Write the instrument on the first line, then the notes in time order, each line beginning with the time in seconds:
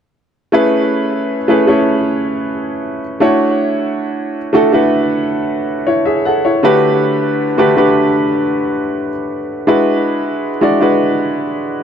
grand piano
0.52 A3 C#4 E4 G#4 B4
1.48 A3 C#4 E4 G#4 B4
1.67 A3 C#4 E4 G#4 C#5
3.20 A3 D4 E4 F#4 C#5
4.53 A3 D4 E4 F#4 A4
4.72 A3 D4 E4 F#4 B4
5.87 E4 C#5
6.05 G#4 E5
6.25 A4 F#5
6.45 E4 C#5
6.63 D3 A3 D4 F#4 G4 B4
7.58 D3 A3 D4 F#4 G4 B4
7.76 D3 A3 D4 F#4 G4 B4
9.67 G#3 D4 E4 F#4 B4
10.61 G#3 D4 E4 F#4 D5
10.80 G#3 D4 E4 F#4 B4